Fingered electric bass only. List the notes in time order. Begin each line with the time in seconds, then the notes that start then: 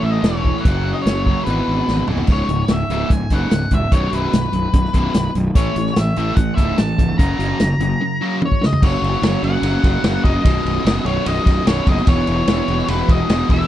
0.03 A1
0.23 E1
0.65 F#1
1.06 F#1
1.47 G#1
1.68 G#1
1.88 G#1
2.08 C1
2.28 C#1
2.48 C#1
2.69 C#1
2.90 C#1
3.10 C#1
3.30 F#1
3.52 C#1
3.71 E1
3.92 B0
4.13 B0
4.33 B0
4.53 B0
4.73 B0
4.94 B0
5.15 B0
5.35 B0
5.55 A1
5.76 A1
5.97 A1
6.17 A1
6.37 A1
6.58 C#1
6.79 A1
6.98 C#1
7.19 F#1
7.39 F#1
7.60 F#1
7.79 F#1
8.83 F#1
9.02 F#1
9.22 F#1
9.43 F#1
9.62 F#1
9.84 F#1
10.03 F#1
10.24 F#1
10.45 B0
10.65 B0
10.85 F#1
11.05 B0
11.26 B0
11.46 B0
11.67 B0
11.87 F#1
12.07 E1
12.28 E1
12.47 E1
12.68 E1
12.88 E1
13.09 E1
13.29 E1
13.50 E1